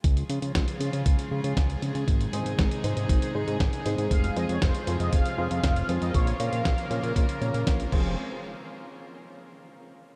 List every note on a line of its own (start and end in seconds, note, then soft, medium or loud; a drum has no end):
0.04 0.24 C#2 medium
0.04 2.06 C#3 medium
0.04 2.06 F3 medium
0.04 6.10 G#3 medium
0.04 2.06 F4 medium
0.04 6.10 G#4 medium
0.04 kick loud
0.04 closed hi-hat medium
0.17 closed hi-hat soft
0.30 0.39 C#3 medium
0.30 closed hi-hat medium
0.42 0.52 C#3 medium
0.42 closed hi-hat soft
0.55 0.65 C#2 medium
0.55 kick loud
0.55 snare loud
0.55 closed hi-hat medium
0.68 closed hi-hat soft
0.80 0.90 C#3 loud
0.80 closed hi-hat medium
0.93 1.03 C#3 medium
0.93 closed hi-hat soft
1.06 1.16 C#2 medium
1.06 kick loud
1.06 closed hi-hat medium
1.19 closed hi-hat soft
1.31 1.41 C#3 loud
1.44 1.54 C#3 loud
1.44 closed hi-hat soft
1.57 1.76 C#2 medium
1.57 kick loud
1.57 snare loud
1.57 closed hi-hat medium
1.70 closed hi-hat soft
1.82 1.92 C#3 loud
1.82 closed hi-hat medium
1.95 2.05 C#3 loud
1.95 closed hi-hat soft
2.08 2.27 G#1 loud
2.08 4.09 C3 medium
2.08 4.09 D#3 medium
2.08 4.09 D#4 medium
2.08 kick loud
2.08 closed hi-hat medium
2.21 closed hi-hat soft
2.33 2.43 G#2 medium
2.33 2.48 C4 medium
2.33 2.48 D#4 medium
2.33 2.48 G#4 medium
2.33 2.48 C5 medium
2.33 closed hi-hat medium
2.46 2.55 G#2 medium
2.46 closed hi-hat soft
2.58 2.68 G#1 medium
2.58 kick loud
2.58 snare loud
2.58 closed hi-hat medium
2.71 closed hi-hat soft
2.84 2.94 G#2 loud
2.84 3.32 C4 medium
2.84 3.32 D#4 medium
2.84 3.32 G#4 medium
2.84 3.32 C5 medium
2.84 closed hi-hat medium
2.97 3.06 G#2 medium
2.97 closed hi-hat soft
3.09 3.19 G#1 loud
3.09 kick loud
3.09 closed hi-hat medium
3.22 closed hi-hat soft
3.35 3.44 G#2 medium
3.35 3.82 C4 medium
3.35 3.83 D#4 medium
3.35 3.83 G#4 medium
3.35 3.83 C5 loud
3.47 3.57 G#2 medium
3.47 closed hi-hat soft
3.60 3.70 G#1 medium
3.60 kick loud
3.60 snare loud
3.60 closed hi-hat medium
3.73 closed hi-hat soft
3.86 3.95 G#2 medium
3.86 4.09 C4 medium
3.86 4.09 D#4 medium
3.86 4.09 G#4 medium
3.86 4.09 C5 loud
3.86 closed hi-hat medium
3.98 4.08 G#2 loud
3.98 closed hi-hat soft
4.11 4.30 F1 medium
4.11 6.12 C3 medium
4.11 7.89 F3 medium
4.11 7.89 F4 medium
4.11 4.37 F5 loud
4.11 kick loud
4.11 closed hi-hat medium
4.24 closed hi-hat soft
4.36 4.46 F2 medium
4.36 4.51 C4 medium
4.36 4.51 F4 medium
4.36 4.51 G#4 medium
4.36 4.51 C5 loud
4.36 4.50 D#5 loud
4.36 closed hi-hat medium
4.49 4.59 F2 medium
4.49 4.61 C#5 medium
4.49 closed hi-hat soft
4.62 4.71 F1 medium
4.62 5.01 C5 loud
4.62 kick loud
4.62 snare loud
4.62 closed hi-hat medium
4.75 closed hi-hat soft
4.87 4.97 F2 loud
4.87 5.35 C4 medium
4.87 5.35 F4 medium
4.87 5.35 G#4 medium
4.87 5.35 C5 medium
4.87 closed hi-hat medium
5.00 5.10 F2 loud
5.00 5.13 D#5 loud
5.00 closed hi-hat soft
5.13 5.22 F1 medium
5.13 5.48 F5 loud
5.13 kick loud
5.13 closed hi-hat medium
5.25 closed hi-hat soft
5.38 5.48 F2 loud
5.38 5.86 C4 medium
5.38 5.86 F4 medium
5.38 5.86 G#4 medium
5.38 5.86 C5 loud
5.51 5.60 F2 loud
5.51 5.98 F5 loud
5.51 closed hi-hat soft
5.64 5.83 F1 medium
5.64 kick loud
5.64 snare loud
5.64 closed hi-hat medium
5.76 closed hi-hat soft
5.89 5.99 F2 loud
5.89 6.13 C4 medium
5.89 6.13 F4 medium
5.89 6.13 G#4 medium
5.89 6.13 C5 loud
5.89 closed hi-hat medium
6.02 6.11 F2 loud
6.02 6.13 D#5 medium
6.02 closed hi-hat soft
6.14 6.34 A#1 loud
6.14 7.91 C#3 medium
6.14 7.91 A#3 medium
6.14 7.91 A#4 medium
6.14 6.38 C#5 loud
6.14 kick loud
6.14 closed hi-hat medium
6.27 closed hi-hat soft
6.40 6.49 A#2 medium
6.40 6.55 C#4 medium
6.40 6.55 F4 medium
6.40 6.55 A#4 medium
6.40 6.55 C#5 medium
6.40 7.38 F5 loud
6.40 closed hi-hat medium
6.52 6.62 A#2 medium
6.52 closed hi-hat soft
6.65 6.75 A#1 medium
6.65 kick loud
6.65 snare loud
6.65 closed hi-hat medium
6.78 closed hi-hat soft
6.91 7.00 A#2 loud
6.91 7.38 C#4 medium
6.91 7.38 F4 medium
6.91 7.38 A#4 medium
6.91 7.38 C#5 loud
6.91 closed hi-hat medium
7.03 7.13 A#2 loud
7.03 closed hi-hat soft
7.16 7.26 A#1 loud
7.16 kick loud
7.16 closed hi-hat medium
7.29 closed hi-hat soft
7.41 7.51 A#2 medium
7.41 7.89 C#4 medium
7.41 7.89 F4 medium
7.41 7.89 A#4 medium
7.41 7.89 C#5 loud
7.41 closed hi-hat soft
7.54 7.64 A#2 medium
7.54 closed hi-hat soft
7.67 7.86 A#1 loud
7.67 kick loud
7.67 snare loud
7.67 closed hi-hat medium
7.80 closed hi-hat soft
7.92 8.16 F1 medium
7.92 8.16 F3 medium
7.92 8.16 G#3 medium
7.92 8.11 C4 medium
7.92 8.16 C4 medium
7.92 8.11 F4 medium
7.92 8.11 G#4 medium
7.92 8.16 G#4 medium
7.92 8.11 C5 medium
7.92 8.16 C5 medium
7.92 kick loud
7.92 crash medium